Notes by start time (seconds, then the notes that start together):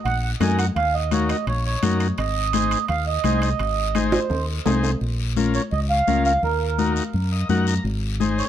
0.05 A#1 F#5, high conga, high timbale, long guiro
0.23 F#5
0.40 F#2 D#4 F#4 A#4 G#5, high conga, high timbale, low timbale, short guiro
0.59 F#5, high timbale, short guiro
0.76 D#2 F5, high conga, high timbale, long guiro
0.94 D#5
1.11 D#4 F#4 A#4 C#5, high conga, high timbale, short guiro
1.29 D#5, high timbale, short guiro
1.47 A#1 C#5, high conga, high timbale, long guiro
1.66 C#5
1.82 F#2 D#4 F#4 A#4, high conga, high timbale, short guiro
2.00 high timbale, short guiro
2.18 G#1 D#5, high conga, high timbale, long guiro
2.53 D#4 G#4 C5, high conga, high timbale, short guiro
2.71 high timbale, short guiro
2.88 D#2 F5, high conga, high timbale, long guiro
3.07 D#5
3.24 C2 D#4 G#4 C5, high conga, high timbale, short guiro
3.42 D#5, high timbale, short guiro
3.59 G#1, high conga, high timbale, long guiro
3.95 D#4 G#4 C5, high conga, high timbale, short guiro
4.12 C5, high timbale, short guiro
4.30 D#2, high conga, low timbale, long guiro
4.66 C2 D#4 G#4 C5, high conga, low timbale, short guiro
4.83 low timbale, short guiro
5.01 A#1, high conga, long guiro
5.36 C#4 F4 A#4, high conga, short guiro
5.54 C#5, short guiro
5.71 C#2 D#5, high conga, long guiro
5.90 F5
6.07 C#2 C#4 F4 A#4, high conga, short guiro
6.25 F5, short guiro
6.43 D#2 A#4, high conga, long guiro
6.78 D#4 F#4 A#4, high conga, short guiro
6.96 short guiro
7.13 F#2, high conga, long guiro
7.32 D#5
7.49 F#2 D#4 F#4 A#4 F#5, high conga, short guiro
7.67 A#5, short guiro
7.84 G#1, high conga, long guiro
8.20 D#4 G#4 C5, high conga, short guiro
8.38 C#5, short guiro